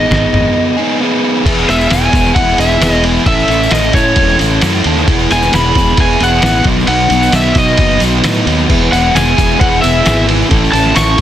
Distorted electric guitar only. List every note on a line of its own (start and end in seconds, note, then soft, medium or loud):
0.00 0.76 B3 loud
0.00 0.77 D#4 medium
0.00 0.75 G#4 loud
0.77 0.99 B3 medium
0.77 1.00 D#4 medium
0.77 0.99 G#4 medium
1.00 1.44 B3 medium
1.00 1.45 D#4 loud
1.00 1.45 G#4 medium
1.45 1.67 B3 loud
1.45 1.69 E4 medium
1.45 1.68 G#4 loud
1.68 1.89 B3 medium
1.68 1.91 E4 medium
1.68 1.90 G#4 medium
1.91 2.12 B3 loud
1.91 2.13 E4 loud
1.91 2.13 G#4 loud
2.13 2.34 B3 medium
2.13 2.36 E4 medium
2.13 2.36 G#4 medium
2.35 2.58 B3 loud
2.35 2.59 E4 loud
2.35 2.59 G#4 loud
2.59 2.80 B3 medium
2.59 2.81 E4 medium
2.59 2.81 G#4 medium
2.82 3.03 B3 loud
2.82 3.04 E4 loud
2.82 3.04 G#4 loud
3.04 3.25 B3 medium
3.04 3.27 E4 medium
3.04 3.26 G#4 medium
3.27 3.48 C#4 loud
3.27 3.50 E4 loud
3.27 3.50 A4 loud
3.50 3.71 C#4 medium
3.50 3.72 E4 loud
3.50 3.72 A4 medium
3.72 3.94 C#4 loud
3.72 3.95 E4 loud
3.72 3.95 A4 loud
3.95 4.16 C#4 medium
3.95 4.17 E4 medium
3.95 4.17 A4 loud
4.18 4.38 C#4 medium
4.18 4.39 E4 loud
4.18 4.40 A4 loud
4.40 4.61 C#4 medium
4.40 4.62 E4 loud
4.40 4.62 A4 loud
4.62 4.84 C#4 loud
4.62 4.84 E4 loud
4.62 4.85 A4 loud
4.85 5.06 C#4 medium
4.85 5.07 E4 medium
4.85 5.07 A4 medium
5.09 5.31 B3 loud
5.09 5.31 E4 loud
5.09 5.32 G#4 loud
5.32 5.53 B3 medium
5.32 5.53 E4 medium
5.32 5.53 G#4 medium
5.53 5.76 B3 loud
5.53 5.76 E4 loud
5.53 5.76 G#4 loud
5.76 5.99 B3 medium
5.76 5.98 E4 medium
5.76 5.99 G#4 loud
5.99 6.20 B3 medium
5.99 6.20 E4 medium
5.99 6.20 G#4 loud
6.20 6.42 B3 medium
6.20 6.43 E4 medium
6.20 6.43 G#4 loud
6.43 6.65 B3 loud
6.43 6.65 E4 loud
6.43 6.65 G#4 loud
6.64 6.86 F#3 loud
6.64 6.88 B3 loud
6.64 6.88 D#4 loud
6.88 7.09 F#3 loud
6.88 7.10 B3 medium
6.88 7.10 D#4 loud
7.10 7.32 F#3 medium
7.10 7.33 B3 medium
7.10 7.33 D#4 loud
7.33 7.54 F#3 medium
7.33 7.56 B3 medium
7.33 7.56 D#4 loud
7.55 7.77 F#3 medium
7.55 7.78 B3 medium
7.55 7.78 D#4 loud
7.78 8.00 F#3 loud
7.78 8.01 B3 medium
7.78 8.01 D#4 medium
8.01 8.22 F#3 medium
8.01 8.23 B3 medium
8.01 8.23 D#4 loud
8.23 8.44 F#3 loud
8.23 8.45 B3 loud
8.23 8.46 D#4 loud
8.45 8.68 F#3 medium
8.45 8.67 B3 medium
8.45 8.68 D#4 medium
8.68 8.91 B3 medium
8.68 8.92 E4 loud
8.68 8.92 G#4 loud
8.92 9.13 B3 medium
8.92 9.15 E4 loud
8.92 9.14 G#4 medium
9.14 9.36 B3 loud
9.14 9.37 E4 loud
9.14 9.38 G#4 loud
9.37 9.58 B3 medium
9.37 9.60 E4 loud
9.37 9.60 G#4 loud
9.60 9.81 B3 medium
9.60 9.82 E4 loud
9.60 9.82 G#4 loud
9.82 10.03 B3 loud
9.82 10.05 E4 medium
9.82 10.05 G#4 medium
10.04 10.26 B3 medium
10.04 10.28 E4 loud
10.04 10.27 G#4 loud
10.27 10.48 B3 loud
10.27 10.49 E4 loud
10.27 10.50 G#4 medium
10.49 10.71 C#4 loud
10.49 10.73 E4 loud
10.49 10.73 A4 loud
10.72 10.93 C#4 medium
10.72 10.95 E4 medium
10.72 10.95 A4 medium
10.95 11.17 C#4 loud
10.95 11.18 E4 loud
10.95 11.18 A4 loud